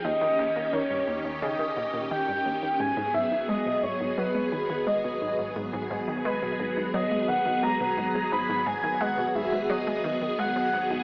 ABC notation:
X:1
M:4/4
L:1/16
Q:1/4=87
K:Ebmix
V:1 name="Soft synth lead"
e4 d4 e4 g4 | [K:G#m] g2 e2 d2 c2 B2 B2 d3 z | z4 B4 d2 f2 a4 | b2 g2 f2 e2 d2 d2 f4 |]
V:2 name="String machine"
[E,DG]16 | [K:G#m] [F,B,G]16- | [F,B,G]16- | [F,B,G]16 |]
V:3 name="Synth arpeggio sound" clef=bass
E,, E,, E,, B,, E, G,, E,, E,, D, E, B,, B,, E, G,, E,, E,, | [K:G#m] G,, G,, G,, D, G, B,, G,, G,, F, G, D, D, G, B,, G,, G,, | G,, G,, G,, D, G, B,, G,, G,, F, G, D, D, G, B,, G,, G,, | G,, G,, G,, D, G, B,, G,, G,, F, G, D, D, G, B,, G,, G,, |]
V:4 name="Analog synth bass" clef=bass
z16 | [K:G#m] G,,,16- | G,,,16- | G,,,16 |]